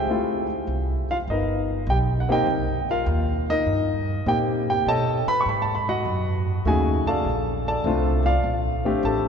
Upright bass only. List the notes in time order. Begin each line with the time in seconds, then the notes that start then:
0.07 D2
0.67 C2
1.09 muted upright bass stroke
1.27 G1
1.87 B1
2.46 C2
2.88 muted upright bass stroke
3.06 D#2
3.66 G2
4.26 A#2
4.86 B2
5.27 muted upright bass stroke
5.46 G#2
6.05 F#2
6.65 D#2
7.05 muted upright bass stroke
7.24 A#1
7.84 C2
8.44 A#1
9.03 A1